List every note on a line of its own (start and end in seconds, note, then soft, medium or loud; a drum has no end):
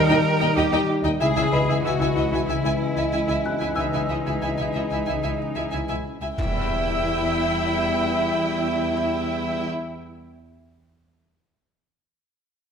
0.00 0.13 D#3 medium
0.00 1.16 G3 medium
0.00 1.16 D#4 medium
0.00 0.57 A#4 medium
0.00 0.84 G5 medium
0.00 0.21 A5 soft
0.09 0.16 D#2 soft
0.09 0.16 D#4 soft
0.09 0.17 D#5 soft
0.09 0.16 G5 soft
0.27 0.45 D#4 soft
0.40 0.49 D#2 soft
0.40 0.46 D#4 soft
0.40 0.48 D#5 soft
0.40 0.47 G5 soft
0.55 0.64 D#2 medium
0.55 0.62 D#4 medium
0.55 0.77 D#4 soft
0.55 0.88 G4 medium
0.55 0.62 D#5 medium
0.55 0.63 G5 soft
0.71 0.80 D#2 soft
0.71 0.78 D#4 soft
0.71 0.79 D#5 soft
0.71 0.79 G5 soft
0.90 1.08 D#4 soft
1.03 1.11 D#2 soft
1.03 1.10 D#4 soft
1.03 1.11 D#5 soft
1.03 1.10 G5 soft
1.19 1.27 C#2 medium
1.19 1.40 C#3 medium
1.19 6.01 E3 soft
1.19 6.01 G#3 soft
1.19 1.26 E4 soft
1.19 1.79 G#4 medium
1.19 1.27 E5 medium
1.19 1.27 G#5 soft
1.35 1.43 C#2 soft
1.35 1.41 E4 soft
1.35 1.43 E5 soft
1.35 1.43 G#5 soft
1.51 1.59 C#2 soft
1.51 1.73 C#3 soft
1.51 1.58 E4 soft
1.51 3.40 B4 soft
1.51 1.59 D#5 soft
1.51 1.60 E5 soft
1.51 3.41 B5 soft
1.67 1.74 C#2 soft
1.67 1.74 E4 soft
1.67 1.76 E5 soft
1.67 1.77 G#5 soft
1.83 1.90 C#2 medium
1.83 2.05 C#3 soft
1.83 1.90 E4 soft
1.83 2.48 F#4 medium
1.83 1.92 E5 soft
1.83 1.92 G#5 soft
2.00 2.07 C#2 soft
2.00 2.06 E4 soft
2.00 2.08 E5 soft
2.00 2.07 G#5 soft
2.15 2.23 C#2 soft
2.15 2.36 C#4 soft
2.15 2.22 E4 soft
2.15 2.24 D#5 soft
2.15 2.23 E5 soft
2.31 2.38 C#2 soft
2.31 2.38 E4 soft
2.31 2.40 E5 soft
2.31 2.40 G#5 soft
2.47 2.54 C#2 soft
2.47 2.68 C#3 soft
2.47 2.53 E4 soft
2.47 3.75 E4 soft
2.47 2.55 E5 soft
2.47 2.55 G#5 soft
2.63 2.70 C#2 soft
2.63 2.69 E4 soft
2.63 2.72 E5 soft
2.63 2.71 G#5 soft
2.81 3.00 C#4 soft
2.96 3.03 C#2 soft
2.96 3.02 E4 soft
2.96 3.03 E5 soft
2.96 3.03 G#5 soft
3.12 3.19 C#2 soft
3.12 3.32 C#4 soft
3.12 3.19 E4 soft
3.12 3.19 E5 soft
3.12 3.19 G#5 soft
3.28 3.35 C#2 soft
3.28 3.35 E4 soft
3.28 3.36 E5 soft
3.28 3.34 G#5 soft
3.45 3.64 C#4 soft
3.45 5.37 F#6 soft
3.60 3.67 C#2 soft
3.60 3.67 E4 soft
3.60 3.68 E5 soft
3.60 3.67 G#5 soft
3.75 3.84 C#2 soft
3.75 3.97 C#3 soft
3.75 5.69 D#4 soft
3.75 3.83 E4 soft
3.75 3.85 E5 soft
3.75 3.82 G#5 soft
3.75 5.68 E6 soft
3.92 4.00 C#2 soft
3.92 3.99 E4 soft
3.92 4.00 E5 soft
3.92 3.99 G#5 soft
4.09 4.17 C#2 soft
4.09 4.29 C#3 soft
4.09 4.16 E4 soft
4.09 4.17 D#5 soft
4.09 4.15 E5 soft
4.26 4.33 C#2 soft
4.26 4.32 E4 soft
4.26 4.33 E5 soft
4.26 4.32 G#5 soft
4.41 4.49 C#2 soft
4.41 4.62 C#3 soft
4.41 4.49 E4 soft
4.41 4.50 E5 soft
4.41 4.48 G#5 soft
4.57 4.66 C#2 soft
4.57 4.66 E4 soft
4.57 4.66 E5 soft
4.57 4.64 G#5 soft
4.73 4.82 C#2 soft
4.73 4.94 C#4 soft
4.73 4.82 E4 soft
4.73 4.82 D#5 soft
4.73 4.80 E5 soft
4.89 4.99 C#2 soft
4.89 4.98 E4 soft
4.89 4.99 E5 soft
4.89 4.96 G#5 soft
5.05 5.15 C#2 soft
5.05 5.27 C#3 soft
5.05 5.14 E4 soft
5.05 5.15 E5 soft
5.05 5.12 G#5 soft
5.22 5.31 C#2 soft
5.22 5.31 E4 soft
5.22 5.30 E5 soft
5.22 5.29 G#5 soft
5.41 5.60 C#4 soft
5.55 5.63 C#2 soft
5.55 5.64 E4 soft
5.55 5.62 E5 soft
5.55 5.62 G#5 soft
5.71 5.79 C#2 soft
5.71 5.92 C#4 soft
5.71 5.80 E4 soft
5.71 5.79 E5 soft
5.71 5.78 G#5 soft
5.88 5.96 C#2 soft
5.88 5.96 E4 soft
5.88 5.96 E5 soft
5.88 5.95 G#5 soft
6.06 6.25 C#4 soft
6.22 6.28 C#2 soft
6.22 6.28 E4 soft
6.22 6.28 E5 soft
6.22 6.28 G#5 soft
6.37 9.68 E2 soft
6.37 9.67 G3 soft
6.37 9.67 E4 soft
6.37 9.68 E4 soft
6.37 9.69 E4 soft
6.37 9.68 E5 soft
6.37 9.67 G5 soft
6.37 8.57 B5 soft
6.37 7.93 E6 soft
6.37 impact soft